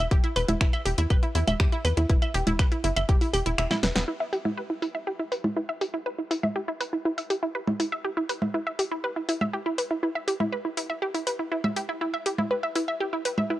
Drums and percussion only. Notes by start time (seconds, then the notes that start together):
0.11 kick, closed hi-hat
0.24 closed hi-hat
0.36 open hi-hat, claves
0.48 closed hi-hat, low conga
0.61 finger snap, kick, closed hi-hat
0.73 closed hi-hat, claves
0.86 open hi-hat
0.98 closed hi-hat
1.10 kick, closed hi-hat, claves
1.23 closed hi-hat
1.35 open hi-hat
1.48 closed hi-hat, low conga, claves
1.60 finger snap, kick, closed hi-hat
1.72 closed hi-hat
1.85 open hi-hat, claves
1.97 closed hi-hat
2.10 kick, closed hi-hat
2.22 closed hi-hat, claves
2.34 open hi-hat
2.47 closed hi-hat, low conga
2.59 finger snap, kick, closed hi-hat, claves
2.72 closed hi-hat
2.84 open hi-hat
2.96 closed hi-hat, claves
3.09 kick, closed hi-hat
3.21 open hi-hat
3.34 open hi-hat, claves
3.46 closed hi-hat
3.58 finger snap, closed hi-hat
3.71 snare, closed hi-hat, low conga, claves
3.83 snare, open hi-hat
3.96 snare, closed hi-hat
4.33 open hi-hat
4.45 low conga
4.82 open hi-hat
5.32 open hi-hat
5.44 low conga
5.81 open hi-hat
6.31 open hi-hat
6.43 low conga
6.81 open hi-hat
7.18 open hi-hat
7.30 open hi-hat
7.67 low conga
7.80 open hi-hat
8.29 open hi-hat
8.42 low conga
8.79 open hi-hat
9.29 open hi-hat
9.41 low conga
9.78 open hi-hat
10.28 open hi-hat
10.40 low conga
10.77 open hi-hat
11.15 open hi-hat
11.27 open hi-hat
11.64 low conga
11.76 open hi-hat
12.26 open hi-hat
12.39 low conga
12.76 open hi-hat
13.25 open hi-hat
13.38 low conga